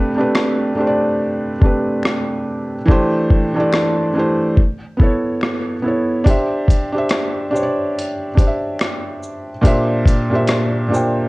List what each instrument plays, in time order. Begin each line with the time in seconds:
Already playing: felt piano C3 A3 D4 G4 B4 D5 F5
0.15 felt piano C3 A3 D4
0.19 felt piano G4 B4
0.35 finger snap, cross-stick
0.75 felt piano C3 A3 D4
0.79 felt piano G4 C5
0.87 felt piano D5
1.60 felt piano C3 A3 D4, kick
1.64 felt piano G4 B4
2.03 finger snap, cross-stick
2.85 felt piano E3 A3 D4, kick
2.90 felt piano G4 C5
3.30 kick
3.54 felt piano E3 A3 D4
3.58 felt piano G4 D5
3.73 finger snap, cross-stick
4.14 felt piano E3 A3 D4
4.18 felt piano G4 C5
4.57 kick
4.97 felt piano B3 E4, kick
5.01 felt piano A4 C#5
5.41 finger snap, cross-stick
5.82 felt piano B3 E4 A4
5.88 felt piano C#5
6.24 felt piano D4 G4, kick, closed hi-hat
6.28 felt piano C5 E5
6.68 kick, closed hi-hat, shaker
6.92 felt piano D4 G4 C5
6.98 felt piano E5
7.09 finger snap, cross-stick, closed hi-hat
7.51 felt piano D4 G4 C5
7.56 felt piano C#5, shaker
7.63 felt piano D5
7.98 closed hi-hat
8.35 felt piano D4 G4 C5, kick, closed hi-hat, shaker
8.40 felt piano D5
8.47 felt piano E5
8.79 finger snap, cross-stick, closed hi-hat
9.23 shaker
9.61 felt piano A#2 D4 G4, kick, closed hi-hat
9.65 felt piano C5 E5
10.06 kick, closed hi-hat, shaker
10.30 felt piano A#2 D4 G4
10.34 felt piano C5 E5
10.47 finger snap, cross-stick, closed hi-hat
10.88 felt piano A#2 D4 G4
10.93 felt piano C5 G5, shaker